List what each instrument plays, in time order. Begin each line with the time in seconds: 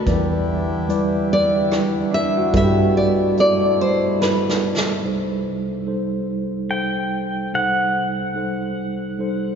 Already playing: harp B3, nylon-string guitar B4
0.06 fingered electric bass E2, tine electric piano E2 E3 G3 E4 B4 D5, harmonium D3 G3 E4, kick, closed hi-hat
0.88 tine electric piano G3 E4 B4 D5, closed hi-hat
1.33 nylon-string guitar D5
1.71 tine electric piano G3 E4 B4 D5, cross-stick, closed hi-hat
2.11 harp D4, nylon-string guitar E5
2.37 harp F#4
2.52 tine electric piano G1 G2 G3 E4 A4 B4, fingered electric bass G2, harmonium B2 A3, kick, closed hi-hat
2.57 nylon-string guitar E5
2.63 harp G4
2.97 nylon-string guitar D5
3.37 tine electric piano G3 E4 A4 D5, nylon-string guitar D5, closed hi-hat
3.81 nylon-string guitar C5
4.19 tine electric piano G3 E4 A4 B4, nylon-string guitar B4, snare
4.49 snare
4.77 snare
5.04 tine electric piano C2 C3 G3 D#4 A4 C5
5.86 tine electric piano G3 D#4 A4 C5
6.68 tine electric piano G3 D#4 A4 C5, pedal steel guitar G5
7.54 tine electric piano C2 C3 G3 D#4 A4 C5, pedal steel guitar F#5
8.35 tine electric piano G3 D#4 A4 C5
9.18 tine electric piano G3 D#4 A4 C5